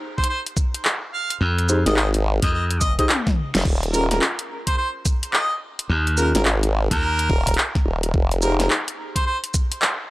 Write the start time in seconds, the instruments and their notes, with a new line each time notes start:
0.18 harmonica C5, kick
0.24 closed hi-hat
0.29 harmonica C5
0.46 closed hi-hat
0.57 kick, shaker
0.74 closed hi-hat
0.85 clap
1.13 harmonica F5
1.30 closed hi-hat
1.41 slap bass F2
1.58 closed hi-hat
1.69 tine electric piano D#4 G4 G#4 C5, shaker
1.86 wobble bass G#1, tine electric piano D#4 G4 G#4 A#4, harmonica D#5, snare, closed hi-hat
1.96 harmonica D#5, clap
2.14 closed hi-hat
2.42 slap bass F2, harmonica D#5, kick, closed hi-hat
2.53 harmonica D#5
2.71 closed hi-hat
2.81 harmonica D#5, kick, shaker
2.99 tine electric piano D#4 G4 G#4 C5, harmonica D#5, kick, closed hi-hat
3.09 clap, high tom
3.27 kick, snare, high tom
3.55 wobble bass F1, snare, closed hi-hat
3.65 wobble bass D#1, kick, crash
3.83 closed hi-hat
3.93 tine electric piano C#4 F4 G#4 A#4, harmonica A#4, shaker
4.11 tine electric piano C#4 F4 G#4 A#4, harmonica A#4, snare, closed hi-hat
4.21 clap
4.39 closed hi-hat
4.67 harmonica C5, kick, closed hi-hat
4.78 harmonica C5
5.05 kick, closed hi-hat, shaker
5.23 closed hi-hat
5.33 harmonica D#5, clap
5.79 closed hi-hat
5.89 slap bass D#2
6.07 closed hi-hat
6.17 tine electric piano C#4 F4 G#4 A#4, harmonica A#4, shaker
6.34 wobble bass G#1, tine electric piano C#4 F4 G#4 A#4, harmonica A#4, snare, closed hi-hat
6.45 clap
6.63 closed hi-hat
6.91 slap bass D#2, harmonica A#4, kick, closed hi-hat
7.19 closed hi-hat
7.29 wobble bass D#1, kick
7.47 kick, closed hi-hat
7.54 clap, closed hi-hat
7.75 kick, snare
7.86 wobble bass D#1
8.03 closed hi-hat
8.14 wobble bass F1, kick
8.31 closed hi-hat
8.42 tine electric piano D#4 G4 G#4 C5, harmonica A#4, shaker
8.59 tine electric piano D#4 G4 G#4 C5, harmonica A#4, snare, closed hi-hat
8.70 clap
8.88 closed hi-hat
9.16 harmonica C5, kick, closed hi-hat
9.27 harmonica C5
9.44 closed hi-hat
9.54 kick, shaker
9.72 closed hi-hat
9.82 clap